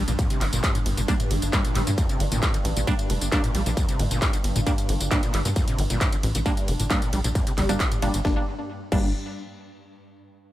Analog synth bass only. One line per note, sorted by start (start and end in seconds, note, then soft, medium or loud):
0.08 0.16 A#1 medium
0.41 0.50 G1 medium
0.53 0.61 G1 medium
0.86 0.94 G1 loud
0.97 1.05 G1 medium
1.31 1.39 G1 loud
1.42 1.50 G1 medium
1.75 1.84 G1 medium
1.87 1.95 G2 medium
2.20 2.29 G1 medium
2.32 2.40 G1 medium
2.65 2.73 A1 medium
2.76 2.84 A1 medium
3.10 3.18 F1 medium
3.21 3.29 G1 medium
3.55 3.63 A#1 loud
3.66 3.74 A#1 medium
3.99 4.08 G1 loud
4.11 4.19 G1 medium
4.44 4.52 G1 medium
4.56 4.64 G1 medium
4.89 4.97 G1 loud
5.01 5.08 G1 medium
5.34 5.42 G1 loud
5.45 5.53 G2 medium
5.79 5.87 G1 loud
5.90 5.98 G1 medium
6.23 6.32 A1 medium
6.35 6.43 A1 medium
6.68 6.76 F1 loud
6.80 6.87 G1 medium
7.13 7.21 A#1 loud
7.24 7.32 A#1 medium
7.58 7.66 G1 loud
7.69 7.77 G1 medium
8.02 8.11 G1 loud
8.14 8.22 G1 medium
8.92 9.13 G1 loud